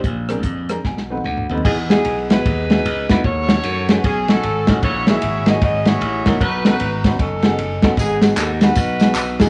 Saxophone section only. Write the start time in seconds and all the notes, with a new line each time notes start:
1.63 B3 D#4 G#4
1.90 B3 D#4 G#4
2.30 D#4 G#4 B4
3.23 F#4 A4 C#5
3.91 B4
4.04 C#4 G#4
4.29 C#4 F#4 A4
4.82 E4 F#4 C#5
5.07 G#4 C#5 E5
5.48 D#5
5.60 F#4 G#4 D#5
5.85 E4 F#4 C#5
6.39 D#4 F#4 B4
6.65 D#4 F#4 B4
7.19 C#4 D#4 A4
7.98 B3 D#4 G#4
8.39 A4
8.62 D#4 F#4 B4